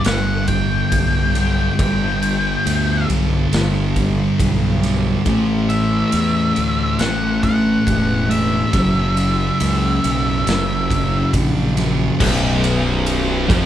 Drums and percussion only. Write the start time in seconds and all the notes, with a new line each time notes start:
0.04 snare, ride
0.48 kick, ride
0.92 kick, ride
1.35 ride
1.79 kick, ride
2.22 ride
2.67 ride
3.10 ride
3.53 snare, ride
3.96 kick, ride
4.40 kick, ride
4.83 snare, ride
5.26 kick, ride
5.70 ride
6.12 ride
6.56 ride
6.99 snare, ride
7.43 kick, ride
7.87 kick, ride
8.31 ride
8.73 kick, ride
9.17 ride
9.60 ride
10.04 ride
10.47 snare, ride
10.90 kick, ride
11.33 kick, ride
11.77 snare, ride
12.20 kick, crash
12.64 ride
13.06 ride
13.50 kick, ride